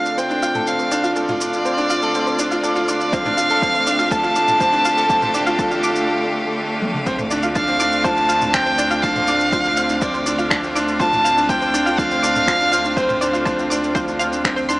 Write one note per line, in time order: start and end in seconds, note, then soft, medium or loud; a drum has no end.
0.00 14.80 D3 medium
0.00 14.80 A3 medium
0.00 0.65 C4 medium
0.00 0.30 D4 medium
0.00 0.98 D4 medium
0.00 0.42 F4 medium
0.00 0.55 A4 medium
0.00 0.20 F5 medium
0.06 14.80 F5 medium
0.06 shaker soft
0.18 0.30 C4 medium
0.18 0.21 C5 loud
0.18 0.69 G5 medium
0.18 shaker soft
0.30 0.42 D4 medium
0.30 shaker soft
0.42 0.54 F4 medium
0.42 0.48 F5 medium
0.42 shaker medium
0.55 0.67 A4 medium
0.55 mid tom medium
0.55 shaker soft
0.67 0.79 C4 medium
0.67 1.16 F5 medium
0.67 shaker soft
0.79 0.83 C5 medium
0.79 shaker soft
0.90 0.99 D4 loud
0.90 4.02 F4 medium
0.90 0.97 D5 medium
0.90 shaker medium
1.03 1.16 F4 medium
1.03 1.09 F5 medium
1.03 shaker soft
1.16 1.23 A4 medium
1.16 2.60 D5 medium
1.16 1.19 A5 medium
1.16 shaker soft
1.29 1.41 F4 loud
1.29 mid tom medium
1.29 shaker soft
1.41 1.48 D4 medium
1.41 1.46 D6 medium
1.41 shaker medium
1.53 shaker soft
1.65 1.77 C4 medium
1.65 1.68 C5 medium
1.65 shaker soft
1.78 1.89 D4 medium
1.78 shaker soft
1.90 2.02 F4 medium
1.90 1.95 F5 loud
1.90 shaker medium
2.02 2.14 A4 medium
2.02 shaker soft
2.15 2.27 C4 medium
2.15 shaker soft
2.27 2.30 C5 medium
2.27 shaker soft
2.39 2.46 D4 medium
2.39 2.44 D5 medium
2.39 shaker medium
2.51 2.63 F4 medium
2.51 2.56 F5 medium
2.51 shaker soft
2.63 2.71 A4 medium
2.63 3.15 D5 medium
2.63 2.67 A5 medium
2.63 shaker soft
2.76 2.88 F4 medium
2.76 shaker soft
2.88 2.96 D4 medium
2.88 2.93 D6 medium
2.88 shaker medium
3.01 shaker soft
3.13 3.25 C4 medium
3.13 3.16 C5 loud
3.13 4.13 F5 loud
3.13 kick loud
3.13 shaker soft
3.25 3.37 D4 loud
3.25 mid tom medium
3.25 shaker soft
3.37 3.50 F4 medium
3.37 3.43 F5 medium
3.37 shaker medium
3.50 3.62 A4 loud
3.50 shaker soft
3.62 3.74 C4 medium
3.62 kick loud
3.62 shaker soft
3.74 3.78 C5 medium
3.74 shaker soft
3.87 3.94 D4 medium
3.87 7.88 G4 medium
3.87 3.92 D5 medium
3.87 shaker medium
3.99 4.11 F4 loud
3.99 4.04 F5 medium
3.99 shaker soft
4.11 4.18 A4 medium
4.11 6.08 A5 loud
4.11 4.15 A5 medium
4.11 kick loud
4.11 shaker soft
4.23 4.35 F4 medium
4.23 shaker soft
4.36 4.43 D4 medium
4.36 4.41 D6 medium
4.36 shaker medium
4.48 mid tom medium
4.48 shaker soft
4.60 4.72 C4 medium
4.60 4.64 C5 medium
4.60 kick loud
4.60 shaker soft
4.72 4.84 D4 loud
4.72 shaker soft
4.85 4.97 F4 medium
4.85 4.90 F5 loud
4.85 shaker medium
4.97 5.09 A4 loud
4.97 shaker soft
5.10 5.22 C4 medium
5.10 kick loud
5.10 shaker soft
5.22 5.25 C5 medium
5.22 mid tom medium
5.22 shaker soft
5.34 5.42 D4 loud
5.34 5.39 D5 medium
5.34 shaker medium
5.47 5.59 F4 loud
5.47 5.52 F5 medium
5.47 shaker soft
5.59 5.66 A4 medium
5.59 5.62 A5 medium
5.59 kick loud
5.59 shaker soft
5.71 5.83 F4 loud
5.71 shaker soft
5.83 5.91 D4 medium
5.83 5.88 D6 medium
5.83 shaker medium
5.96 shaker soft
6.82 high tom medium
6.94 mid tom medium
7.06 14.80 D2 medium
7.06 7.14 C4 loud
7.06 kick loud
7.06 shaker soft
7.18 7.22 C5 medium
7.18 mid tom medium
7.18 shaker soft
7.31 7.43 D4 loud
7.31 7.36 D5 medium
7.31 shaker medium
7.43 7.55 F4 medium
7.43 7.48 F5 medium
7.43 shaker soft
7.55 7.68 D4 loud
7.55 8.06 F5 loud
7.55 7.59 A5 medium
7.55 kick loud
7.55 shaker soft
7.67 7.80 C4 medium
7.67 shaker soft
7.80 7.92 D4 loud
7.80 14.80 F4 medium
7.80 7.85 D6 medium
7.80 shaker medium
7.92 shaker soft
8.04 8.17 F4 medium
8.04 8.08 C5 loud
8.04 8.55 A5 loud
8.04 kick loud
8.04 shaker soft
8.17 8.24 D4 medium
8.17 shaker soft
8.29 8.41 C4 medium
8.29 8.34 F5 loud
8.29 shaker medium
8.42 8.53 D4 medium
8.42 mid tom medium
8.42 shaker soft
8.53 8.61 C4 medium
8.53 9.04 G5 loud
8.53 finger snap medium
8.53 kick loud
8.53 shaker soft
8.66 8.69 C5 medium
8.66 shaker soft
8.78 8.90 D4 loud
8.78 8.84 D5 medium
8.78 shaker medium
8.91 9.03 F4 medium
8.91 8.96 F5 medium
8.91 shaker soft
9.02 9.15 D4 loud
9.02 10.03 F5 loud
9.02 9.06 A5 medium
9.02 kick loud
9.02 shaker soft
9.16 9.27 C4 medium
9.16 mid tom medium
9.16 shaker soft
9.28 9.40 D4 loud
9.28 9.33 D6 medium
9.28 shaker medium
9.40 shaker soft
9.53 9.64 F4 medium
9.53 9.56 C5 medium
9.53 kick loud
9.53 shaker soft
9.65 9.72 D4 medium
9.65 shaker soft
9.77 9.89 C4 medium
9.77 9.82 F5 loud
9.77 shaker medium
9.89 10.01 D4 medium
9.89 shaker soft
10.02 10.09 C4 loud
10.02 10.75 D5 medium
10.02 kick loud
10.02 shaker soft
10.14 10.17 C5 medium
10.14 shaker soft
10.26 10.38 D4 medium
10.26 10.31 D5 medium
10.26 shaker medium
10.38 10.50 F4 medium
10.38 10.43 F5 medium
10.38 shaker soft
10.50 10.63 D4 loud
10.50 10.54 A5 medium
10.50 finger snap medium
10.50 kick loud
10.50 shaker soft
10.63 10.75 C4 medium
10.63 shaker soft
10.75 10.87 D4 loud
10.75 10.80 D6 medium
10.75 shaker medium
10.88 shaker soft
11.00 11.12 F4 medium
11.00 11.03 C5 loud
11.00 11.51 A5 loud
11.00 kick loud
11.00 shaker soft
11.12 11.19 D4 medium
11.12 mid tom medium
11.12 shaker soft
11.25 11.37 C4 medium
11.25 11.30 F5 loud
11.25 shaker medium
11.37 11.49 D4 medium
11.37 shaker soft
11.49 11.57 C4 medium
11.49 11.99 G5 loud
11.49 kick loud
11.49 shaker soft
11.62 11.65 C5 medium
11.62 shaker soft
11.74 11.86 D4 loud
11.74 11.79 D5 medium
11.74 shaker medium
11.86 11.98 F4 medium
11.86 11.91 F5 medium
11.86 shaker soft
11.98 12.10 D4 loud
11.98 12.98 F5 loud
11.98 12.01 A5 medium
11.98 kick loud
11.98 shaker soft
12.11 12.23 C4 medium
12.11 shaker soft
12.23 12.35 D4 medium
12.23 12.28 D6 medium
12.23 shaker medium
12.36 mid tom medium
12.36 shaker soft
12.47 12.59 F4 medium
12.47 12.51 C5 medium
12.47 finger snap medium
12.47 kick loud
12.47 shaker soft
12.60 12.67 D4 medium
12.60 shaker soft
12.72 12.84 C4 medium
12.72 12.77 F5 loud
12.72 shaker medium
12.85 12.96 D4 medium
12.85 shaker soft
12.96 13.04 C4 loud
12.96 13.95 C5 medium
12.96 kick loud
12.96 shaker soft
13.09 13.12 C5 medium
13.09 mid tom medium
13.09 shaker soft
13.21 13.33 D4 medium
13.21 13.26 D5 medium
13.21 shaker medium
13.33 13.46 F4 medium
13.33 13.38 F5 medium
13.33 shaker soft
13.45 13.58 D4 loud
13.45 13.49 A5 medium
13.45 kick loud
13.45 shaker soft
13.59 13.70 C4 medium
13.59 shaker soft
13.70 13.83 D4 loud
13.70 13.75 D6 medium
13.70 shaker medium
13.84 shaker soft
13.95 14.07 F4 medium
13.95 13.98 C5 loud
13.95 kick loud
13.95 shaker soft
14.08 14.15 D4 medium
14.08 shaker soft
14.19 14.32 C4 medium
14.19 14.25 F5 loud
14.19 shaker medium
14.33 14.44 D4 medium
14.33 shaker soft
14.45 14.52 C4 loud
14.45 finger snap medium
14.45 kick loud
14.45 shaker soft
14.56 14.64 C5 medium
14.56 shaker soft
14.69 14.80 D4 loud
14.69 14.76 C6 loud
14.69 shaker medium